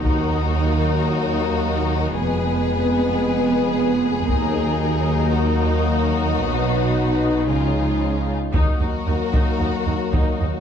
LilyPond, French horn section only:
\new Staff \with { instrumentName = "French horn section" } { \time 4/4 \key ees \minor \tempo 4 = 113 << { bes1 | ces'1 | bes1 | dis'2.~ dis'8 r8 |
bes1 | } \\ { ges1 | aes1 | ges1~ | ges2 f4. r8 |
ges1 | } >> }